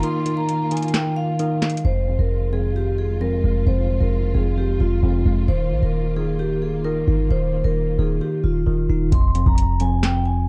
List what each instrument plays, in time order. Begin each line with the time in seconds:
Already playing: tine electric piano D#3 D#4, string section D#3 A#3 F4
0.03 tine electric piano D#3, vibraphone C6, closed hi-hat
0.26 tine electric piano D#3, closed hi-hat
0.37 vibraphone A#5
0.49 closed hi-hat
0.71 tine electric piano D#3, vibraphone G#5, closed hi-hat
0.77 closed hi-hat
0.82 closed hi-hat
0.88 closed hi-hat
0.94 tine electric piano D#3, vibraphone G5, snare, clap, closed hi-hat
1.16 vibraphone F5
1.39 tine electric piano D#3, closed hi-hat
1.62 tine electric piano D#4, snare, clap, closed hi-hat
1.70 closed hi-hat
1.77 closed hi-hat
1.85 808-style bass F1, tine electric piano F2, string section D#3 G#3 F4, vibraphone C5
2.08 tine electric piano F2
2.19 808-style bass F1, vibraphone A#4
2.53 tine electric piano F2, vibraphone G#4
2.76 tine electric piano F2, vibraphone G4
2.98 vibraphone G#4
3.21 tine electric piano F2, vibraphone A#4
3.44 808-style bass F1, tine electric piano G#3
3.67 808-style bass F1, tine electric piano F2, vibraphone C5
3.89 tine electric piano F2
4.00 808-style bass F1, vibraphone A#4
4.34 808-style bass F1, tine electric piano F2, vibraphone G#4
4.58 tine electric piano F2, vibraphone G4
4.80 808-style bass F1, vibraphone F4
5.03 808-style bass F1, tine electric piano F2
5.26 808-style bass F1, tine electric piano G#3
5.48 808-style bass D#1, tine electric piano D#3, string section A#3, vibraphone C5
5.71 808-style bass A#1, tine electric piano D#3
5.83 808-style bass D#1, vibraphone A#4
6.16 tine electric piano D#3, vibraphone G#4
6.39 tine electric piano D#3, vibraphone G4
6.62 vibraphone G#4
6.84 tine electric piano D#3, vibraphone A#4
7.08 808-style bass G1, tine electric piano D#4
7.30 808-style bass D#1, tine electric piano D#3, vibraphone C5
7.53 tine electric piano D#3
7.64 808-style bass D#1, vibraphone A#4
7.98 808-style bass D#1, tine electric piano D#3, vibraphone G#4
8.21 tine electric piano D#3, vibraphone G4
8.44 808-style bass D#1, vibraphone F4
8.67 808-style bass D#1, tine electric piano D#3
8.89 808-style bass D#1, tine electric piano D#4
9.12 808-style bass F1, tine electric piano F2, vibraphone C6, kick, closed hi-hat
9.35 tine electric piano F2, closed hi-hat
9.46 808-style bass F1, vibraphone A#5, kick
9.58 closed hi-hat
9.80 tine electric piano F2, vibraphone G#5, closed hi-hat
10.03 tine electric piano F2, vibraphone G5, snare, clap, closed hi-hat
10.26 vibraphone G#5